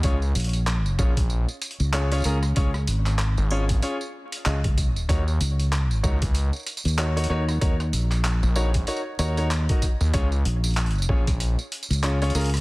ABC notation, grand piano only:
X:1
M:4/4
L:1/16
Q:"Swing 16ths" 1/4=95
K:Dbmix
V:1 name="Grand piano"
[DFAd] z4 z [DFAd] z4 z [DFAd] [DFAd] [DFAB] z | [DFAd] z4 z [DFAd] z [DFAd] z3 [DFAe] z3 | [EGBd] z4 z [EGBd] z4 z [EGBd] [EGBd] [EGBd] z | [EGBd] z4 z [EGBd] z [EGBd] z [EGBd] [EGBd] z [EGBe] z2 |
[DFAd] z4 z [DFAd] z4 z [DFAd] [DFAd] [DFAB] z |]